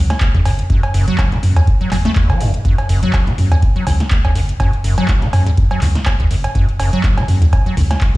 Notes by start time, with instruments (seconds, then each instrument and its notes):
Already playing: sub bass C#2
0.10 snare, closed hi-hat, cowbell
0.21 acid bass F#1, kick, clap, closed hi-hat
0.34 acid bass E2, kick, closed hi-hat, mid tom
0.45 sub bass F#1, acid bass F#2, open hi-hat, cowbell
0.59 closed hi-hat
0.70 acid bass F#2, kick, closed hi-hat
0.83 closed hi-hat, cowbell
0.94 sub bass F#1, acid bass F#2, open hi-hat
1.08 acid bass F#3, closed hi-hat
1.18 acid bass F#1, kick, snare, clap, closed hi-hat, cowbell
1.32 acid bass E3, snare, closed hi-hat
1.43 sub bass F#2, mid tom, open hi-hat
1.56 acid bass E2, closed hi-hat, cowbell
1.67 kick, closed hi-hat
1.81 acid bass F#3, closed hi-hat
1.91 sub bass F#1, acid bass F#3, clap, mid tom, open hi-hat, cowbell
2.05 acid bass A3, snare, closed hi-hat
2.16 acid bass E2, kick, clap, closed hi-hat
2.30 acid bass F#3, kick, closed hi-hat, cowbell
2.40 sub bass F#1, acid bass F#2, open hi-hat
2.54 closed hi-hat
2.65 acid bass F#2, kick, closed hi-hat
2.78 closed hi-hat, cowbell
2.89 sub bass F#1, acid bass F#2, open hi-hat
3.03 acid bass F#3, closed hi-hat
3.13 acid bass F#1, kick, snare, clap, closed hi-hat, cowbell
3.27 acid bass E3, snare, closed hi-hat
3.38 sub bass F#2, mid tom, open hi-hat
3.52 acid bass E2, closed hi-hat, cowbell
3.62 kick, closed hi-hat
3.76 acid bass F#3, closed hi-hat
3.87 acid bass F#1, sub bass C#2, mid tom, open hi-hat, cowbell
4.00 snare, closed hi-hat
4.11 acid bass F#1, kick, clap, closed hi-hat
4.25 acid bass E2, kick, closed hi-hat, mid tom, cowbell
4.35 sub bass F#1, acid bass F#2, open hi-hat
4.49 closed hi-hat
4.60 acid bass F#2, kick, closed hi-hat, cowbell
4.73 closed hi-hat
4.84 sub bass F#1, acid bass F#2, open hi-hat
4.98 acid bass F#3, closed hi-hat, cowbell
5.08 acid bass F#1, kick, snare, clap, closed hi-hat
5.22 acid bass E3, snare, closed hi-hat
5.33 sub bass F#2, mid tom, open hi-hat, cowbell
5.46 acid bass E2, closed hi-hat
5.57 kick, closed hi-hat
5.71 acid bass F#3, closed hi-hat, cowbell
5.81 acid bass F#1, sub bass C#2, clap, mid tom, open hi-hat
5.95 snare, closed hi-hat
6.06 acid bass F#1, kick, clap, closed hi-hat, cowbell
6.20 acid bass E2, kick, closed hi-hat
6.31 sub bass F#1, acid bass F#2, open hi-hat
6.44 closed hi-hat, cowbell
6.55 acid bass F#2, kick, closed hi-hat
6.69 closed hi-hat
6.79 sub bass F#1, acid bass F#2, open hi-hat, cowbell
6.93 acid bass F#3, closed hi-hat
7.03 acid bass F#1, kick, snare, clap, closed hi-hat
7.17 acid bass E3, snare, closed hi-hat, cowbell
7.28 sub bass F#2, mid tom, open hi-hat
7.42 acid bass E2, closed hi-hat
7.53 kick, closed hi-hat, cowbell
7.66 acid bass F#3, closed hi-hat
7.77 acid bass F#1, sub bass C#2, mid tom, open hi-hat
7.91 snare, closed hi-hat, cowbell
8.01 acid bass F#1, kick, clap, closed hi-hat